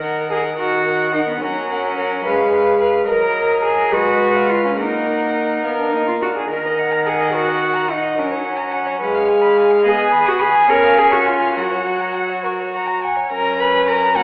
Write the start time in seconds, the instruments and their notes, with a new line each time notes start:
Already playing: viola D#3, cello A#4
0.02 violin A#4 F#5
0.29 cello G#4, violin A#4 F#5
0.57 viola D#3, cello F#4, violin A#4 F#5
0.86 violin A#4 F#5
1.13 cello D#4, violin A#4 F#5
1.28 cello B3
1.41 viola F#3, cello C#4, violin A#4 F#5
1.70 violin A#4 F#5
1.97 violin A#4 F#5
2.24 viola G#3, violin B4 F5
2.52 violin B4 F5
2.80 violin B4 F5
3.07 viola F#3, violin A#4 D#5, cello A#4
3.65 cello G#4
3.91 viola G#3, cello F#4, violin B4 D#5
4.35 violin F5
4.50 cello F4
4.65 cello C#4
4.77 viola A#3, cello D#4, violin A#4 F#5
5.64 viola B3, violin A#4 F5
5.79 cello D4
5.92 viola A#3, cello D#4
6.08 cello F4
6.22 viola D4, cello F#4
6.37 cello G#4
6.50 viola D#3, violin A#4 F#5, cello A#4
6.65 violin D#5
6.79 violin F#5
6.93 violin A#5
7.07 cello G#4, violin F#5
7.20 violin D#5
7.35 cello F#4, violin A#4
7.48 violin D#5
7.62 violin F#5
7.75 violin A#5
7.90 cello D#4, violin F#5
8.03 violin D#5
8.18 viola F#3, cello C#4, violin A#4
8.31 violin C#5
8.45 violin F#5
8.59 violin A#5
8.72 violin F#5
8.86 violin C#5
9.00 viola G#3, violin B4 F5
9.15 violin F5
9.28 violin G#5
9.42 violin B5
9.57 violin G#5
9.71 violin F5
9.84 viola B3, cello G#4, violin D#5 G#5
9.99 violin G#5
10.12 violin B5
10.26 cello F#4, violin D#6
10.39 cello G#4, violin B5
10.55 violin G#5
10.69 viola C#4, cello A#4, violin C#5
10.83 violin F5
10.98 cello G#4, violin G#5
11.11 cello F#4, violin C#6
11.26 cello F4, violin G#5
11.41 violin F5
11.56 viola F#3, cello F#4, violin A#4 F#5
11.71 violin C#5
11.86 violin F#5
12.01 violin A#5
12.15 violin F#5
12.29 violin C#5
12.44 violin A#4 C#6
12.60 violin C#5
12.74 violin F#5 A#5
12.88 violin A#5
13.03 violin F#5 G#5
13.16 violin C#5
13.31 cello F#2, viola C#4, violin A#4 A#5
13.60 violin B4 B5
13.88 violin A#4 A#5
14.16 cello A#2, viola C#4, violin F#4 F#5